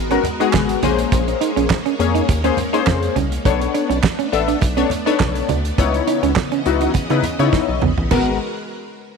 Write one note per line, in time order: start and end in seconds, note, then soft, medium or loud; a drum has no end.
0.00 0.18 G#1 loud
0.00 3.41 G#3 medium
0.00 0.81 B3 medium
0.00 0.81 F#4 medium
0.00 0.81 A#4 medium
0.11 0.25 G#3 medium
0.11 0.25 B3 medium
0.11 0.18 C#4 medium
0.11 0.25 F#4 medium
0.11 0.26 A#4 medium
0.11 closed hi-hat medium
0.24 muted clean electric guitar stroke soft
0.24 closed hi-hat medium
0.24 muted conga soft
0.24 low conga medium
0.40 0.83 G#3 medium
0.40 0.83 B3 medium
0.40 0.48 D#4 medium
0.40 0.83 F#4 medium
0.40 0.82 G#4 loud
0.40 closed hi-hat medium
0.53 0.76 G#1 medium
0.53 kick loud
0.53 snare loud
0.53 clap medium
0.53 high conga medium
0.69 closed hi-hat medium
0.83 1.05 A#1 loud
0.83 1.77 A#3 medium
0.83 3.43 A#3 medium
0.83 0.92 C#4 medium
0.83 1.77 C#4 medium
0.83 3.43 C#4 medium
0.83 1.77 G#4 medium
0.83 1.77 C5 loud
0.83 closed hi-hat medium
0.83 high conga medium
0.99 closed hi-hat medium
1.12 1.34 A#1 loud
1.12 kick loud
1.12 closed hi-hat medium
1.12 muted conga medium
1.28 muted clean electric guitar stroke soft
1.28 closed hi-hat soft
1.41 1.50 D#4 medium
1.41 closed hi-hat medium
1.56 1.67 A#1 loud
1.56 1.64 C#4 medium
1.56 closed hi-hat medium
1.70 kick loud
1.70 snare loud
1.70 clap medium
1.70 high conga medium
1.86 1.93 C#4 medium
1.86 closed hi-hat soft
1.99 2.21 F2 medium
1.99 2.26 A#3 loud
1.99 2.26 C#4 medium
1.99 2.26 G#4 medium
1.99 2.26 C#5 loud
1.99 muted clean electric guitar stroke soft
1.99 closed hi-hat medium
2.15 2.22 D#4 medium
2.15 closed hi-hat medium
2.29 2.51 D#2 loud
2.29 kick loud
2.29 closed hi-hat loud
2.29 muted conga soft
2.44 2.58 A#3 medium
2.44 2.52 C#4 medium
2.44 2.58 C#4 medium
2.44 2.59 G#4 medium
2.44 2.59 C5 medium
2.44 closed hi-hat medium
2.57 muted clean electric guitar stroke soft
2.57 closed hi-hat medium
2.57 muted conga soft
2.57 low conga medium
2.73 3.16 A#3 medium
2.73 3.16 C#4 medium
2.73 2.81 D#4 medium
2.73 3.16 G#4 medium
2.73 3.16 C5 loud
2.73 closed hi-hat medium
2.87 3.09 F2 loud
2.87 kick loud
2.87 snare loud
2.87 clap medium
2.87 high conga medium
3.03 closed hi-hat medium
3.16 3.38 C2 medium
3.16 3.25 C#4 medium
3.16 closed hi-hat medium
3.16 high conga medium
3.32 closed hi-hat medium
3.45 3.67 B1 loud
3.45 5.76 A3 medium
3.45 3.98 B3 medium
3.45 8.08 B3 medium
3.45 3.98 D4 medium
3.45 5.76 D4 medium
3.45 3.98 A4 medium
3.45 3.98 C#5 loud
3.45 kick loud
3.45 closed hi-hat medium
3.45 muted conga medium
3.61 muted clean electric guitar stroke soft
3.61 closed hi-hat soft
3.74 3.83 D4 medium
3.74 closed hi-hat medium
3.90 4.00 B1 loud
3.90 3.97 C#4 medium
3.90 closed hi-hat medium
4.03 kick loud
4.03 snare loud
4.03 clap medium
4.03 high conga medium
4.19 4.26 C#4 medium
4.19 closed hi-hat soft
4.32 4.54 A1 medium
4.32 4.59 B3 medium
4.32 4.59 D4 medium
4.32 4.59 A4 medium
4.32 4.59 E5 loud
4.32 muted clean electric guitar stroke soft
4.32 closed hi-hat medium
4.48 4.56 D4 medium
4.48 closed hi-hat medium
4.61 4.84 B1 loud
4.61 kick loud
4.61 closed hi-hat medium
4.61 muted conga medium
4.77 4.91 B3 medium
4.77 4.85 C#4 medium
4.77 4.91 D4 medium
4.77 4.91 A4 medium
4.77 4.92 C#5 medium
4.77 closed hi-hat medium
4.90 muted clean electric guitar stroke soft
4.90 closed hi-hat medium
4.90 muted conga soft
4.90 low conga medium
5.06 5.49 B3 medium
5.06 5.49 D4 medium
5.06 5.14 D#4 medium
5.06 5.49 A4 medium
5.06 5.49 C#5 loud
5.06 closed hi-hat soft
5.20 5.42 B1 loud
5.20 kick loud
5.20 snare loud
5.20 clap medium
5.20 high conga medium
5.35 closed hi-hat medium
5.49 5.71 D2 loud
5.49 5.58 D4 medium
5.49 closed hi-hat medium
5.49 high conga medium
5.65 closed hi-hat medium
5.78 6.00 C#2 loud
5.78 8.09 C#3 medium
5.78 8.09 E3 medium
5.78 6.31 B3 medium
5.78 6.31 D#4 medium
5.78 6.31 E4 medium
5.78 6.31 C#5 loud
5.78 8.09 D#5 medium
5.78 kick loud
5.78 closed hi-hat medium
5.78 muted conga medium
5.94 muted clean electric guitar stroke soft
5.94 closed hi-hat soft
6.07 6.16 D#4 medium
6.07 closed hi-hat medium
6.23 6.33 C#2 loud
6.23 6.31 C#4 medium
6.23 closed hi-hat medium
6.36 kick loud
6.36 snare loud
6.36 clap medium
6.36 high conga medium
6.52 6.60 C#4 medium
6.52 closed hi-hat soft
6.66 6.88 C#2 loud
6.66 6.92 B3 medium
6.66 6.92 D#4 medium
6.66 6.92 E4 medium
6.66 6.92 F#4 loud
6.66 muted clean electric guitar stroke soft
6.66 closed hi-hat medium
6.81 6.89 D#4 medium
6.81 closed hi-hat medium
6.94 kick loud
6.94 closed hi-hat loud
6.94 muted conga medium
7.10 7.20 C#3 loud
7.10 7.24 B3 medium
7.10 7.18 D#4 medium
7.10 7.24 D#4 medium
7.10 7.25 E4 medium
7.10 7.25 B4 medium
7.10 closed hi-hat soft
7.23 muted clean electric guitar stroke soft
7.23 closed hi-hat medium
7.23 muted conga soft
7.23 low conga medium
7.39 7.50 C#3 medium
7.39 7.82 B3 medium
7.39 7.47 C#4 medium
7.39 7.82 D#4 medium
7.39 7.82 E4 medium
7.39 7.82 C#5 loud
7.39 closed hi-hat medium
7.53 kick loud
7.53 snare medium
7.53 high conga medium
7.69 7.79 B1 medium
7.82 7.94 A#1 loud
7.82 7.91 B3 medium
7.82 mid tom medium
7.82 high conga medium
7.97 8.08 A1 medium
7.97 floor tom medium
8.11 8.38 G#1 loud
8.11 8.38 G#3 medium
8.11 8.39 G#3 medium
8.11 8.38 B3 medium
8.11 8.29 B3 medium
8.11 8.38 F#4 medium
8.11 8.39 F#4 medium
8.11 8.38 A#4 medium
8.11 8.39 A#4 medium
8.11 8.39 B4 medium
8.11 kick medium
8.11 floor tom medium
8.11 crash medium
8.11 muted conga medium